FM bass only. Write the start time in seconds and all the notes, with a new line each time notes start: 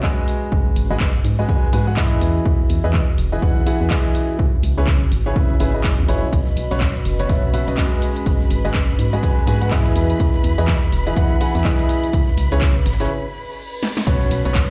0.52 G#1
0.76 G#1
0.90 G#1
1.25 G#2
1.73 G#2
2.21 E2
2.46 E2
2.70 E2
2.84 E2
3.18 E1
3.42 E2
3.81 E2
4.39 C#2
4.63 C#2
4.77 C#2
5.12 G#1
5.60 G#1
5.98 E2
6.08 G#1
6.23 B1
6.33 B1
6.57 B1
6.71 B1
7.05 F#1
7.29 B1
7.68 B1
8.26 G#1
8.50 G#1
8.65 G#1
8.99 G#2
9.47 G#2
9.96 E2
10.20 E2
10.44 E2
10.58 E2
10.92 E1
11.17 E2
11.55 E2
12.13 C#2
12.37 C#2
12.52 C#2
12.86 G#1
14.07 B1
14.31 B1
14.45 B1